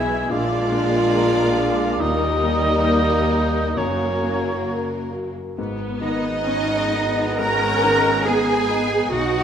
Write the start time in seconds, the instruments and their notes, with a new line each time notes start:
Already playing: felt piano B1 E4 G#4, double bass section B1, cello section B2, viola section E3 G#3, french horn section E3 E4, violin section E4 E5, clarinet G#4, oboe G#5, flute section E6
0.29 felt piano A#1, double bass section A#1, cello section A#2, viola section G#3 A#3, french horn section G#3 D4, violin section D4 D5, clarinet F4, oboe F5, flute section D6
0.72 felt piano D4, flute section C6
1.14 felt piano A#4, flute section A#5
1.57 felt piano G#4, flute section D6
2.00 felt piano D#2, cello section D#2, double bass section D#2, viola section G3 A#3, french horn section G3 A#3, clarinet D#4, violin section D#4 A#4, oboe D#5, flute section D#6
2.43 felt piano A#3
2.87 felt piano A#4, flute section G6
3.32 felt piano G4
3.77 double bass section F#1, cello section F#2, felt piano F#2, viola section F#3 A#3, french horn section F#3, violin section A#3 A#4, clarinet C#4, oboe C#5, flute section A#5
4.22 felt piano A#3
4.67 felt piano A#4
5.13 felt piano F#4
5.58 double bass section G#1, felt piano G#2, french horn section G#3 B3, viola section B3
6.00 felt piano D#3, oboe B3, cello section D#4, flute section D#5, violin section D#5
6.45 felt piano B3, viola section C#4
6.92 viola section B3, felt piano D#4
7.38 felt piano G#2, viola section C#4, oboe F#4, cello section A#4, flute section A#5, violin section A#5
7.84 felt piano D#3
8.25 viola section B3, felt piano B3, oboe D#4, cello section G#4, flute section G#5, violin section G#5
8.69 felt piano D#4
9.10 double bass section B1, felt piano B1, french horn section F#3 B3, oboe D#4, viola section D#4, cello section F#4, violin section F#5, flute section F#5